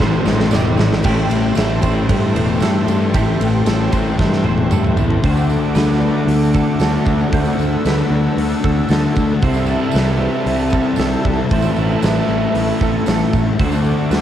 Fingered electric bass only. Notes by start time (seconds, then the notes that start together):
0.00 A1
0.25 A1
0.52 E1
0.78 A1
1.05 A1
1.30 A1
1.56 A1
1.83 A1
2.09 G2
2.35 E1
2.61 G2
2.88 G2
3.14 A1
3.40 A1
3.66 A1
3.92 A1
4.19 G2
4.44 E1
4.71 G2
4.97 E2
5.23 D2
5.75 D2
6.27 D2
6.80 D2
7.06 D2
7.32 D2
7.58 D2
7.85 D2
8.10 D2
8.37 D2
8.64 D2
8.89 D2
9.17 D2
9.42 C2
9.94 C2
10.46 C2
10.98 C2
11.25 C2
11.51 A1
11.77 A1
12.03 A1
12.28 A1
12.54 A1
12.81 A1
13.07 A1
13.34 A1
13.59 D2
14.10 D2